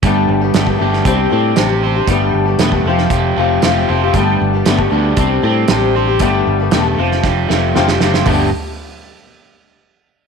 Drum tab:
HH |x---x---x---x---|x---x---x---x---|x---x---x---x---|x---x-----------|
SD |----o--o----o---|----o--o----o---|----o-------o---|----o--oo-o-oooo|
FT |----------------|----------------|----------------|----------------|
BD |o----o--o-------|o----o--o-------|o----o--o-------|o-------o-------|

HH |o---------------|
SD |----------------|
FT |o---------------|
BD |o---------------|